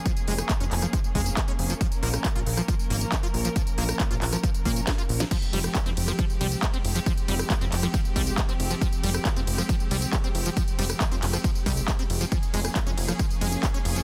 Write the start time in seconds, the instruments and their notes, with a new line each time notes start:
Already playing: string section F3 A#3 C#4 G#4
0.06 acid bass F3, kick, closed hi-hat, tambourine
0.17 closed hi-hat, tambourine
0.28 analog synth bass F1, acid bass G#3, open hi-hat
0.38 cross-stick, closed hi-hat, tambourine
0.49 acid bass A#3, kick, clap, closed hi-hat, tambourine
0.60 analog synth bass F1, acid bass C#4, closed hi-hat, tambourine
0.71 analog synth bass F1, clap, open hi-hat
0.82 acid bass F3, cross-stick, closed hi-hat, tambourine
0.93 acid bass F3, kick, closed hi-hat, tambourine
1.04 tambourine
1.15 analog synth bass F1, acid bass G#3, kick, open hi-hat
1.26 closed hi-hat, tambourine
1.37 acid bass A#3, kick, clap, closed hi-hat, tambourine
1.48 acid bass C#4, closed hi-hat, tambourine
1.59 analog synth bass F1, open hi-hat
1.70 acid bass F3, closed hi-hat, tambourine
1.81 acid bass F3, string section F3 A#4, kick, closed hi-hat, tambourine
1.92 closed hi-hat, tambourine
2.03 analog synth bass A#1, acid bass A#3, open hi-hat
2.14 cross-stick, closed hi-hat, tambourine
2.25 acid bass C#4, kick, clap, closed hi-hat, tambourine
2.35 analog synth bass A#1, acid bass F4, closed hi-hat, tambourine
2.46 analog synth bass A#1, open hi-hat
2.57 acid bass F3, cross-stick, closed hi-hat, tambourine
2.68 acid bass F3, kick, closed hi-hat, tambourine
2.79 tambourine
2.90 analog synth bass G#1, acid bass A#3, open hi-hat
3.01 closed hi-hat, tambourine
3.12 acid bass C#4, kick, clap, closed hi-hat, tambourine
3.23 acid bass F4, closed hi-hat, tambourine
3.34 analog synth bass A#1, open hi-hat
3.45 acid bass F3, closed hi-hat, tambourine
3.56 acid bass F3, kick, closed hi-hat, tambourine
3.67 closed hi-hat, tambourine
3.78 analog synth bass A#1, acid bass A#3, open hi-hat
3.89 cross-stick, closed hi-hat, tambourine
4.00 acid bass C#4, kick, clap, closed hi-hat, tambourine
4.11 analog synth bass A#1, acid bass F4, closed hi-hat, tambourine
4.22 analog synth bass A#1, clap, open hi-hat
4.33 acid bass F3, cross-stick, closed hi-hat, tambourine
4.43 acid bass F3, kick, closed hi-hat, tambourine
4.54 closed hi-hat, tambourine
4.65 analog synth bass A#2, acid bass A#3, kick, open hi-hat
4.76 closed hi-hat, tambourine
4.87 acid bass C#4, kick, snare, clap, closed hi-hat, tambourine
4.98 acid bass F4, closed hi-hat, tambourine
5.09 analog synth bass A#1, open hi-hat
5.20 acid bass F3, snare, closed hi-hat, tambourine
5.31 acid bass F3, string section G#3 C4 G4, kick, closed hi-hat, tambourine, crash
5.42 closed hi-hat, tambourine
5.53 analog synth bass F1, acid bass G3, open hi-hat, ride
5.64 cross-stick, closed hi-hat, tambourine
5.75 acid bass G#3, kick, clap, closed hi-hat, tambourine
5.86 analog synth bass F1, acid bass C4, closed hi-hat, tambourine
5.97 analog synth bass F1, open hi-hat, ride
6.08 acid bass F3, cross-stick, closed hi-hat, tambourine
6.19 acid bass F3, kick, closed hi-hat, tambourine
6.30 tambourine
6.41 analog synth bass C2, acid bass G3, open hi-hat, ride
6.52 closed hi-hat, tambourine
6.62 acid bass G#3, kick, clap, closed hi-hat, tambourine
6.74 acid bass C4, closed hi-hat, tambourine
6.84 analog synth bass F1, open hi-hat, ride
6.95 acid bass F3, closed hi-hat, tambourine
7.06 acid bass F3, kick, closed hi-hat, tambourine
7.17 closed hi-hat, tambourine
7.28 analog synth bass F1, acid bass G3, open hi-hat, ride
7.39 cross-stick, closed hi-hat, tambourine
7.50 acid bass G#3, kick, clap, closed hi-hat, tambourine
7.61 analog synth bass F1, acid bass C4, closed hi-hat, tambourine
7.72 analog synth bass F1, clap, open hi-hat, ride
7.83 acid bass F3, cross-stick, closed hi-hat, tambourine
7.94 acid bass F3, kick, closed hi-hat, tambourine
8.05 tambourine
8.16 analog synth bass C2, acid bass G3, kick, open hi-hat, ride
8.27 closed hi-hat, tambourine
8.38 acid bass G#3, kick, clap, closed hi-hat, tambourine
8.49 acid bass C4, closed hi-hat, tambourine
8.60 analog synth bass F1, open hi-hat, ride
8.70 acid bass F3, closed hi-hat, tambourine
8.81 acid bass F3, kick, closed hi-hat, tambourine
8.93 closed hi-hat, tambourine
9.03 analog synth bass F1, acid bass G3, open hi-hat, ride
9.14 cross-stick, closed hi-hat, tambourine
9.25 acid bass G#3, kick, clap, closed hi-hat, tambourine
9.36 analog synth bass F1, acid bass C4, closed hi-hat, tambourine
9.47 analog synth bass F1, open hi-hat, ride
9.58 acid bass F3, cross-stick, closed hi-hat, tambourine
9.69 acid bass F3, kick, closed hi-hat, tambourine
9.80 tambourine
9.91 analog synth bass C2, acid bass G3, open hi-hat, ride
10.02 closed hi-hat, tambourine
10.13 acid bass G#3, kick, clap, closed hi-hat, tambourine
10.24 acid bass C4, closed hi-hat, tambourine
10.35 analog synth bass F1, open hi-hat, ride
10.46 acid bass F3, closed hi-hat, tambourine
10.57 acid bass F3, kick, closed hi-hat, tambourine
10.68 closed hi-hat, tambourine
10.79 analog synth bass F1, acid bass G3, open hi-hat, ride
10.90 cross-stick, closed hi-hat, tambourine
11.00 acid bass G#3, kick, clap, closed hi-hat, tambourine
11.11 analog synth bass F1, acid bass C4, closed hi-hat, tambourine
11.22 analog synth bass F1, clap, open hi-hat, ride
11.33 acid bass F3, cross-stick, closed hi-hat, tambourine
11.44 acid bass F3, kick, closed hi-hat, tambourine
11.55 tambourine
11.66 analog synth bass C2, acid bass G3, kick, open hi-hat, ride
11.77 closed hi-hat, tambourine
11.88 acid bass G#3, kick, clap, closed hi-hat, tambourine
11.99 acid bass C4, closed hi-hat, tambourine
12.10 analog synth bass F1, open hi-hat, ride
12.21 acid bass F3, closed hi-hat, tambourine
12.32 acid bass F3, string section F3 A#3 C#4 G#4, kick, closed hi-hat, tambourine
12.43 closed hi-hat, tambourine
12.54 analog synth bass F1, acid bass G#3, open hi-hat, ride
12.65 cross-stick, closed hi-hat, tambourine
12.76 acid bass A#3, kick, clap, closed hi-hat, tambourine
12.87 analog synth bass F1, acid bass C#4, closed hi-hat, tambourine
12.97 analog synth bass F1, open hi-hat, ride
13.08 acid bass F3, cross-stick, closed hi-hat, tambourine
13.19 acid bass F3, kick, closed hi-hat, tambourine
13.30 tambourine
13.41 analog synth bass F1, acid bass G#3, open hi-hat, ride
13.52 closed hi-hat, tambourine
13.63 acid bass A#3, kick, clap, closed hi-hat, tambourine
13.74 acid bass C#4, closed hi-hat, tambourine
13.85 analog synth bass F1, open hi-hat, ride
13.96 acid bass F3, closed hi-hat, tambourine